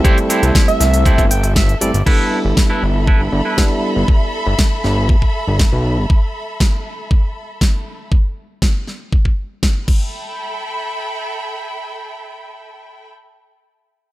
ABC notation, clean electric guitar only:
X:1
M:4/4
L:1/16
Q:1/4=119
K:G
V:1 name="Clean electric guitar"
[EGAc] z [EGAc]3 z3 [EGAc]2 g2 e2 d2 | [EAB]2 z3 [EAB] z2 [EAB] z2 [EAB] z4 | z16 | z16 |
z16 | z16 | z16 |]